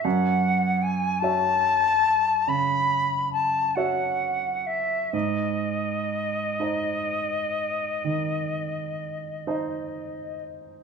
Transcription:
<<
  \new Staff \with { instrumentName = "Flute" } { \time 12/8 \key gis \phrygian \tempo 4. = 43 fis''4 gis''8 a''4. b''4 a''8 fis''4 e''8 | dis''1~ dis''4. r8 | }
  \new Staff \with { instrumentName = "Grand piano" } { \time 12/8 \key gis \phrygian fis,4. <fis' cis'' e''>4. cis4. <fis' cis'' e''>4. | gis,4. <dis' bis' dis''>4. dis4. <dis' bis' dis''>4. | }
>>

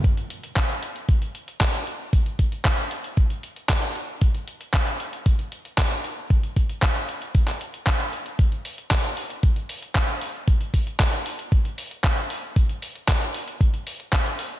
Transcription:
\new DrumStaff \with { instrumentName = "Drums" } \drummode { \time 4/4 \tempo 4 = 115 <hh bd>16 hh16 hh16 hh16 <hc hh bd>16 hh16 hh16 hh16 <hh bd>16 hh16 hh16 hh16 <hc hh bd>16 hh16 hh8 | <hh bd>16 hh16 <hh bd>16 hh16 <hc hh bd>16 hh16 hh16 hh16 <hh bd>16 hh16 hh16 hh16 <hc hh bd>16 hh16 hh8 | <hh bd>16 hh16 hh16 hh16 <hc hh bd>16 hh16 hh16 hh16 <hh bd>16 hh16 hh16 hh16 <hc hh bd>16 hh16 hh8 | <hh bd>16 hh16 <hh bd>16 hh16 <hc hh bd>16 hh16 hh16 hh16 <hh bd>16 <hc hh>16 hh16 hh16 <hc hh bd>16 hh16 hh16 hh16 |
<hh bd>16 hh16 hho16 hh16 <hc hh bd>16 hh16 hho16 hh16 <hh bd>16 hh16 hho16 hh16 <hc hh bd>16 hh16 hho8 | <hh bd>16 hh16 <hho bd>16 hh16 <hc hh bd>16 hh16 hho16 hh16 <hh bd>16 hh16 hho16 hh16 <hc hh bd>16 hh16 hho8 | <hh bd>16 hh16 hho16 hh16 <hc hh bd>16 hh16 hho16 hh16 <hh bd>16 hh16 hho16 hh16 <hc hh bd>16 hh16 hho8 | }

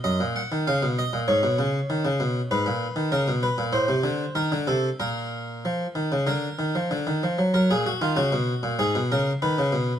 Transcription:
<<
  \new Staff \with { instrumentName = "Harpsichord" } { \time 4/4 \key cis \mixolydian \tempo 4 = 96 dis''8 fis''8 eis''8 dis''8 cis''2 | \key ees \minor ces''4 bes'8 ces''8 c''4 bes'8 a'8 | bes'2 bes'4. r8 | bes'16 aes'16 ges'16 f'16 ges'4 aes'8 bes'8 ces''4 | }
  \new Staff \with { instrumentName = "Harpsichord" } { \clef bass \time 4/4 \key cis \mixolydian fis,16 ais,8 dis16 cis16 b,8 ais,16 gis,16 b,16 cis8 dis16 cis16 b,8 | \key ees \minor aes,16 bes,8 ees16 des16 ces8 bes,16 a,16 c16 d8 ees16 d16 c8 | bes,4 f8 ees16 des16 d8 ees16 f16 d16 ees16 f16 ges16 | ges16 bes,8 ees16 des16 ces8 bes,16 aes,16 ces16 des8 ees16 des16 ces8 | }
>>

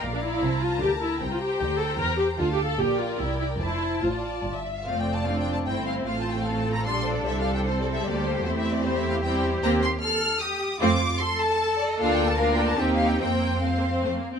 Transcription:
<<
  \new Staff \with { instrumentName = "Violin section" } { \time 3/4 \key f \major \tempo 4 = 151 bes''2.~ | bes''4 bes''2 | a''4 g''4 g''4 | a''2~ \tuplet 3/2 { a''8. d''16 e''8 } |
\tuplet 3/2 { f''8 g''8 a''8 f''8 g''8 a''8 } g''8 f''8 | \tuplet 3/2 { f''8 a''8 g''8 f''8 a''8 bes''8 c'''8. c''16 d''8 } | \tuplet 3/2 { e''8 f''8 g''8 c''8 d''8 e''8 } d''8 c''8 | \tuplet 3/2 { c''8 e''8 d''8 c''8 e''8 f''8 } g''8 r8 |
\key f \mixolydian bes''8 c'''8 f'''4 ees'''4 | d'''4 c'''8 a''8~ \tuplet 3/2 { a''8. d''16 ees''8 } | \tuplet 3/2 { f''8 g''8 a''8 f''8 g''8 a''8 g''8 f''8 g''8 } | g''4 f''4. r8 | }
  \new Staff \with { instrumentName = "Violin section" } { \time 3/4 \key f \major << { f''4 a''2 | g''2. | f''4 d''2 | a''4 c''16 d''4 e''8 f''16 |
d''2 c''4 | c''4 a'4 d''4 | c''2 c''4~ | c''4 c''4 c''4 |
\key f \mixolydian c''8 r2 r8 | c''8 r2 r8 | bes'4 bes'8 a'8 g'4 | c''4 c''4 c''8 r8 | } \\ { d''4 c''4 bes'4 | c''2. | a'4 bes'2 | c''4 r2 |
f'2 e'4 | f'4 f'2 | g'4 a'2 | g'4 e'4 e'4 |
g'8 r2 r8 | f'8 r2 r8 | f'4 f'4 ees'4 | c'4 c'4 c'8 r8 | } >> }
  \new Staff \with { instrumentName = "Cello section" } { \time 3/4 \key f \major bes,4 c4 d4 | c4 d4 e4 | d4 bes,4 c4 | f,4 a,4 g,4 |
r4 d'4 c'4 | f'4 a'2~ | a'2 g'4 | e'4 g'2~ |
\key f \mixolydian g'4 a'4 g'4 | f'4 a'2~ | a'4 bes'4 g'4 | c'2~ c'8 r8 | }
  \new Staff \with { instrumentName = "Viola section" } { \time 3/4 \key f \major << { r16 d'16 e'4 f'8 g'8 e'8 | r16 f'16 g'4 a'8 bes'8 g'8 | \tuplet 3/2 { f'8 g'8 a'8 } g'8 f'8 e'8 e'8 | e'4 f'4 r4 |
c'4 a4 a4 | c'2 d'4~ | d'4 c'4 bes4 | c'2 c'4 |
\key f \mixolydian c'8 r2 r8 | c'8 r2 r8 | d'4 d'4 c'4 | c'4 \tuplet 3/2 { a8 bes8 c'8 a8 bes8 c'8 } | } \\ { r2. | r2. | r2. | r2. |
a4 c'4 c'4 | a2 g4 | g2. | a2 g4 |
bes8 r2 r8 | a8 r2 r8 | bes4 bes4 bes4 | bes4 r2 | } >> }
  \new Staff \with { instrumentName = "Double bass section" } { \clef bass \time 3/4 \key f \major bes,,4 c,4 d,4 | c,4 d,4 e,4 | d,4 bes,,4 c,4 | f,,4 a,,4 g,,4 |
f,,2 g,,4 | a,,2 bes,,4 | c,2 d,4 | e,2. |
\key f \mixolydian ees,4 r2 | f,4 r2 | d,2 ees,4 | f,2 f,8 r8 | }
>>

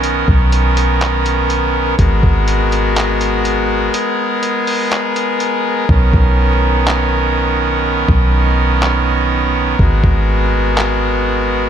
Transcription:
<<
  \new Staff \with { instrumentName = "Pipe organ" } { \time 4/4 \key gis \minor \tempo 4 = 123 << { ais'1 | ais'1~ | ais'1~ | ais'1~ |
ais'1~ | ais'1 | } \\ { cis'1 | fis'1 | gis'1 | cis'1~ |
cis'1 | fis'1 | } >> }
  \new Staff \with { instrumentName = "Pipe organ" } { \clef bass \time 4/4 \key gis \minor << { b1 | b1~ | b1 | b1~ |
b1~ | b1 | } \\ { dis1 | gis1~ | gis1 | dis1~ |
dis1 | gis1 | } >> }
  \new Staff \with { instrumentName = "808-style bass" } { \clef bass \time 4/4 \key gis \minor b,,8 b,,2.~ b,,8 | gis,,8 gis,,2.~ gis,,8 | r1 | b,,8 b,,2.~ b,,8~ |
b,,8 b,,2.~ b,,8 | gis,,8 gis,,2.~ gis,,8 | }
  \new DrumStaff \with { instrumentName = "Drums" } \drummode { \time 4/4 hh8 bd8 hh8 hh8 <hc hh>8 hh8 hh4 | <hh bd>8 bd8 hh8 hh8 <hc hh>8 hh8 hh4 | hh4 hh8 hho8 <hc hh>8 hh8 hh4 | bd8 bd8 r4 hc4 r4 |
r8 bd8 r4 hc4 r4 | bd8 bd8 r4 hc4 r4 | }
>>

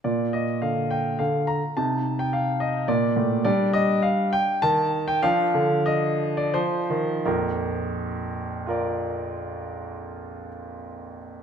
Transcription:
<<
  \new Staff \with { instrumentName = "Grand piano" } { \time 3/4 \key bes \major \tempo 4 = 96 << { d''8 ees''8 f''8 g''8 f''8 bes''8 | a''8. g''16 f''8 ees''8 d''4 | d''8 ees''8 f''8 g''8 a''8. g''16 | f''4 ees''8. d''16 c''4 |
bes'2.~ | bes'2. | } \\ { f'2. | ees'2 r4 | d'2 r4 | d'2 r4 |
r2 <f' bes' d''>4~ | <f' bes' d''>2. | } >> }
  \new Staff \with { instrumentName = "Grand piano" } { \clef bass \time 3/4 \key bes \major bes,4 d4 d4 | c2 bes,8 a,8 | g2 ees4 | f8 d4. f8 ees8 |
<bes,, f,>2.~ | <bes,, f,>2. | }
>>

